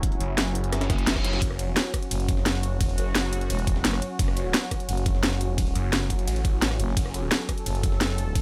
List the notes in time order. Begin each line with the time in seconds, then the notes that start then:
Already playing: F#1 F#3 C#4 E4
0.03 kick, closed hi-hat
0.12 closed hi-hat
0.20 F#1, closed hi-hat
0.38 snare, closed hi-hat
0.55 closed hi-hat
0.64 closed hi-hat
0.72 G1, cross-stick, snare, closed hi-hat, reverse cymbal
0.81 snare, closed hi-hat
0.90 F#1, kick, snare, closed hi-hat
0.98 closed hi-hat
1.07 F#1, snare, closed hi-hat
1.16 kick, cross-stick
1.25 snare, closed hi-hat
1.33 snare, closed hi-hat
1.42 F#1 F#4, kick, closed hi-hat, ride
1.51 cross-stick
1.59 closed hi-hat, ride
1.77 snare, closed hi-hat, ride
1.94 kick, cross-stick, closed hi-hat, ride
2.03 closed hi-hat
2.11 F#1, closed hi-hat, ride
2.20 closed hi-hat
2.29 kick, closed hi-hat, ride
2.37 snare
2.46 snare, closed hi-hat, open hi-hat, ride
2.55 snare
2.63 closed hi-hat, ride
2.71 F1
2.81 kick, closed hi-hat, ride
2.89 closed hi-hat
2.98 F#1, closed hi-hat, ride
3.15 snare, closed hi-hat, ride
3.33 closed hi-hat, ride
3.41 closed hi-hat
3.50 E1, closed hi-hat, ride
3.59 closed hi-hat
3.67 kick, closed hi-hat, ride
3.76 snare
3.85 F#1, snare, closed hi-hat, ride
3.93 cross-stick
4.02 closed hi-hat, ride
4.19 F#1, kick, closed hi-hat, ride
4.28 cross-stick
4.37 closed hi-hat, ride
4.54 snare, closed hi-hat, ride
4.71 kick, cross-stick, closed hi-hat, ride
4.80 closed hi-hat
4.89 F#1, closed hi-hat, ride
4.97 closed hi-hat
5.06 kick, closed hi-hat, ride
5.15 snare
5.23 snare, closed hi-hat, open hi-hat, ride
5.32 snare
5.41 closed hi-hat, ride
5.58 kick, closed hi-hat, ride
5.67 closed hi-hat
5.75 F#1, closed hi-hat, ride
5.93 snare, closed hi-hat, ride
6.10 kick, closed hi-hat, ride
6.19 closed hi-hat
6.27 A1, closed hi-hat, ride
6.36 closed hi-hat
6.45 kick, closed hi-hat, ride
6.62 snare, closed hi-hat, ride
6.71 cross-stick
6.79 F#1, closed hi-hat, ride
6.88 snare
6.97 F#1 A4, kick, closed hi-hat, ride
7.06 cross-stick
7.14 closed hi-hat, ride
7.32 snare, closed hi-hat, ride
7.49 kick, cross-stick, closed hi-hat, ride
7.58 closed hi-hat
7.66 F#1, closed hi-hat, ride
7.75 closed hi-hat
7.83 kick, closed hi-hat, ride
7.92 snare
8.01 snare, closed hi-hat, open hi-hat, ride
8.10 snare
8.18 closed hi-hat, ride
8.35 kick, closed hi-hat, ride